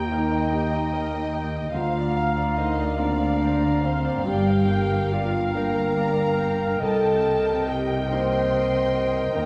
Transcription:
Already playing: D#2 D#3 A#3 D#4 G4 A#4 D#5 G5 A#5
0.11 D#4 A#4 D#5
0.31 D#5
0.52 A#3 D#4 G4 D#5 G5
0.73 D#5
0.93 A#4 G5
1.13 D#5
1.34 D#5 G5
1.54 D#5
1.73 D2 D3 F4 C5 F5 A#5
1.95 D5
2.15 C4 F5
2.36 D5
2.55 D#4 A#4 C5 D#5
2.77 D5
2.97 A#3 C4 D4 F4 C5 D5 F5 A#5
3.18 D5
3.39 C5 F5
3.61 D5
3.81 C4 C5 F5
4.04 D5
4.24 G1 G2 G4 A#4 D5 F5 G5
4.47 F5
4.68 A#3 G5
4.90 F5
5.11 F4 D5 F5
5.33 F5
5.54 A#3 D4 F4 A#4 G5 A#5
5.75 F5
5.96 D5
6.18 F5
6.39 A#4 G5
6.60 F5
6.80 C2 C3 A4 D#5 G5 A5
7.03 G5
7.23 A#3 D#5
7.45 G5
7.67 G4 D#5 G5
7.90 G5
8.10 A#3 D#4 G4 A#4 C5 D#5 C6
8.32 G5
8.52 D#5
8.74 G5
8.93 A#4 D#5
9.14 G5
9.34 D#2 D#3 A#4 D#5 G5 A#5

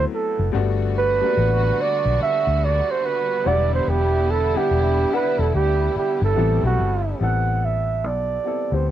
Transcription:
Already playing: F#3 A3 B3 C4 E4
0.14 A4
0.39 F#1
0.52 G1 D3 G3 A3 B3 D4 F#4
0.98 B4
1.21 G3 A3 A#3 D4 F#4
1.29 B3
1.37 A1
1.82 D5
2.06 B1
2.21 E5, muted fingered electric bass stroke
2.47 D2
2.65 D5
2.91 C5
3.06 B4
3.44 E1 D3 F#3 B3 D4 E4 D5 F#5
3.51 G3
3.74 C5
3.87 E1 G4
4.30 A4
4.54 G3 B3 D4 E4 G4 F#5
4.71 E1
5.11 G3 B3 D4 E4 B4 F#5
5.39 E1 A4
5.54 D2 G4
5.96 G4, muted fingered electric bass stroke
6.21 G1 A4
6.36 A1 C3 G3 A3 B3 C4 E4 A4
6.63 B1 F#4
6.79 G1
7.19 A1 G3 B3 C4 E4 A4 F#5
7.65 E5
8.04 B1 D5
8.44 G3 B3 C4 E4 A4
8.71 D2 G3 B3 C4 E4 G4 C5

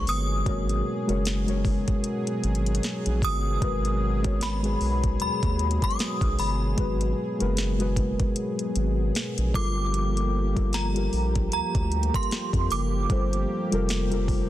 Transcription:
Already playing: B2 F#3 G#3 A#3 F#4 G#4 C#5
0.07 G1 D#6, open hi-hat
0.45 G#1 G#3 F#4 A#4 C#5, kick, closed hi-hat
0.69 closed hi-hat
1.07 F#1 G#3 F#4 A#4 C#5, closed hi-hat
1.25 snare, closed hi-hat
1.46 G#3 F#4 A#4 C#5, closed hi-hat
1.65 kick, open hi-hat
1.88 kick, closed hi-hat
2.04 closed hi-hat
2.27 closed hi-hat
2.44 G#1, closed hi-hat
2.55 closed hi-hat
2.66 closed hi-hat
2.75 closed hi-hat
2.83 snare, closed hi-hat
3.06 A#1, closed hi-hat
3.22 G1 D#6, kick, open hi-hat
3.60 G#1 G#3 F#4 A#4 B4, kick, closed hi-hat
3.85 closed hi-hat
4.22 G#3 F#4 A#4 C#5, kick, closed hi-hat
4.41 B5, snare, closed hi-hat
4.62 G#3 F#4 G#4 B4, closed hi-hat
4.81 B1, open hi-hat
5.04 kick, closed hi-hat
5.20 D#2 B5, closed hi-hat
5.43 D#2, kick, closed hi-hat
5.59 closed hi-hat
5.71 closed hi-hat
5.82 D#6, kick, closed hi-hat
5.90 closed hi-hat
5.99 snare, closed hi-hat
6.21 B1, kick, closed hi-hat
6.39 G1 B5, open hi-hat
6.76 G#1 G#3 F#4 G#4 B4, kick, closed hi-hat
7.01 closed hi-hat
7.39 F#1 G#3 F#4 A#4 B4, closed hi-hat
7.57 snare, closed hi-hat
7.78 G#3 F#4 G#4 B4, closed hi-hat
7.96 kick, closed hi-hat
8.20 kick, closed hi-hat
8.36 closed hi-hat
8.59 closed hi-hat
8.76 G#1, closed hi-hat
9.15 snare, closed hi-hat
9.38 A#1, closed hi-hat
9.53 G1 F3 G3 A#3 F4 G4 A4 A#4 D6, kick, open hi-hat
9.94 closed hi-hat
10.17 closed hi-hat
10.54 G3 F4 A4 A#4, kick, closed hi-hat
10.73 A#5, snare, closed hi-hat
10.94 G3 F4 G4 A#4, closed hi-hat
11.13 A#1, open hi-hat
11.35 kick, closed hi-hat
11.52 D2 A#5, closed hi-hat
11.75 D2, kick, closed hi-hat
11.92 closed hi-hat
12.03 closed hi-hat
12.14 C6, kick, closed hi-hat
12.23 closed hi-hat
12.31 snare, closed hi-hat
12.53 F2, kick, closed hi-hat
12.71 F#1 D6, open hi-hat
13.08 G1 G3 F4 A4 C5, kick, closed hi-hat
13.33 closed hi-hat
13.70 F1 G3 F4 A4 A#4, closed hi-hat
13.89 snare, closed hi-hat
14.10 G3 F4 A4 A#4, closed hi-hat
14.28 kick, open hi-hat

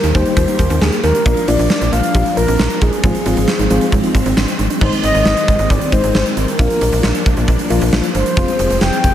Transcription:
Already playing: D#3 A#3 G4 A#4
0.03 D#2 D#4, closed hi-hat
0.15 D#2 G3 A#3 D#4 G4 C5, kick, closed hi-hat
0.26 closed hi-hat
0.37 D#2 F4, kick, closed hi-hat
0.48 D#4, closed hi-hat
0.59 D#2, kick, closed hi-hat
0.70 D#2 C4, closed hi-hat
0.81 D#2 D4 G#4, snare
0.92 closed hi-hat
1.03 D#2 D#4 A#4, closed hi-hat
1.15 D4, closed hi-hat
1.26 A#1 F3 A#3 D4 F4 A#4, kick, closed hi-hat
1.37 closed hi-hat
1.48 A#1 F3 A#3 D4 F4 D5, closed hi-hat
1.59 A#1 D4, closed hi-hat
1.70 snare
1.81 A#1 F4, closed hi-hat
1.92 A#1 F3 A#3 D4 F4 F5, closed hi-hat
2.03 closed hi-hat
2.15 A#1 G4, kick, closed hi-hat
2.26 F4, closed hi-hat
2.37 A#1 A#4, closed hi-hat
2.48 A#1 C4, closed hi-hat
2.59 A#1 D4, snare
2.70 closed hi-hat
2.81 A#1 D#4 G#4, kick, closed hi-hat
2.93 D4, closed hi-hat
3.03 G#1 F3 G#3 C4 F4, kick, closed hi-hat
3.15 closed hi-hat
3.26 G#1 F3 G#3 C4 F4, closed hi-hat
3.37 G#1 C4, closed hi-hat
3.48 snare
3.59 G#1 D#4, closed hi-hat
3.70 G#1 F3 G#3 C4 D#4 F4, closed hi-hat
3.81 closed hi-hat
3.92 G#1 F4, kick, closed hi-hat
4.04 D#4, closed hi-hat
4.15 G#1, kick, closed hi-hat
4.26 G#1 C4, closed hi-hat
4.37 G#1 D4, snare
4.48 closed hi-hat
4.59 G#1 D#4, closed hi-hat
4.70 D4, closed hi-hat
4.81 G#1 D#3 G#3 C4 D#4 C5, kick, crash
4.92 closed hi-hat
5.03 G#1 D#5, closed hi-hat
5.15 G#1, closed hi-hat
5.25 G#1, snare
5.37 closed hi-hat
5.48 G#1, kick, closed hi-hat
5.59 G#1, closed hi-hat
5.70 G#1 D5, kick, closed hi-hat
5.81 closed hi-hat
5.92 G#1 D#3 G#3 C4 D#4 C5, kick, closed hi-hat
6.04 G#1, closed hi-hat
6.15 G#1 C5, snare
6.26 closed hi-hat
6.37 G#1 A#4, closed hi-hat
6.48 closed hi-hat
6.59 A#1 F3 A#3 D4 F4, kick, closed hi-hat
6.70 closed hi-hat
6.81 A#1, closed hi-hat
6.92 A#1, closed hi-hat
7.03 A#1, snare
7.15 closed hi-hat
7.26 A#1, kick, closed hi-hat
7.37 A#1, closed hi-hat
7.48 A#1, kick, closed hi-hat
7.59 closed hi-hat
7.70 A#1 F3 A#3 D4 F4, closed hi-hat
7.81 A#1, closed hi-hat
7.92 A#1, snare
8.03 closed hi-hat
8.15 G1 C5, closed hi-hat
8.26 closed hi-hat
8.37 F1 F3 G#3 C4 F4 G#4, kick, closed hi-hat
8.48 closed hi-hat
8.59 F1, closed hi-hat
8.70 F1, closed hi-hat
8.81 F1 G5, snare
8.93 closed hi-hat
9.04 F1, kick, closed hi-hat

